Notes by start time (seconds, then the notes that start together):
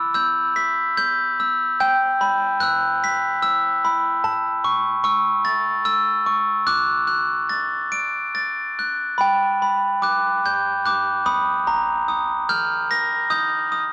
Already playing: B5 E6
0.15 E6 G6
0.56 B6
0.97 G6
1.40 E6
1.80 G5 G6
2.21 B5
2.60 E6 F#6
3.04 B6
3.42 E6
3.85 B5
4.24 A5
4.65 C#6
5.04 C#6 E6
5.45 A6
5.85 E6
6.26 C#6
6.67 D6 F#6
7.07 F#6
7.49 A6
7.92 D7
8.35 A6
8.79 F#6
9.18 G5 B5
9.62 B5
10.02 D6 F#6
10.46 G6
10.86 D6 F#6
11.26 B5 D#6
11.67 A#5
12.08 D#6
12.49 F6 G6
12.91 A#6
13.30 D#6 G6
13.72 D#6